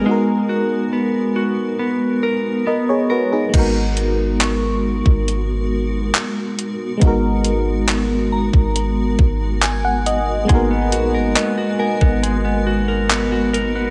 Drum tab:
CC |----------------|x---------------|----------------|----------------|
HH |----------------|x-x-x---x---x-x-|x-x-x---x---x-x-|x-x-x---x---x-x-|
CP |----------------|----x-------x---|----x-------x---|----x-------x---|
BD |----------------|o------o--------|o------o--o-----|o------o--------|